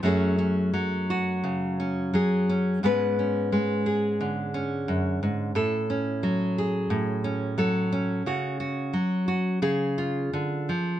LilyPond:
\new Staff \with { instrumentName = "Nylon-string guitar" } { \time 4/4 \key fis \minor \tempo 4 = 88 << { <fis a cis' gis'>8 cis'4 fis'4 cis'8 gis'8 cis'8 | <gis b cis' b'>8 cis'4 gis'4 cis'4. | a'8 cis'4 gis'4 cis'8 a'8 cis'8 | fis'8 fis'4 fis'8 gis'8 eis'4. | } \\ { fis,4 fis4 cis4 fis4 | gis,4 gis4 d4 fis,8 gis,8 | a,4 fis4 a,4 fis4 | cis4 fis4 cis4 d8 eis8 | } >> }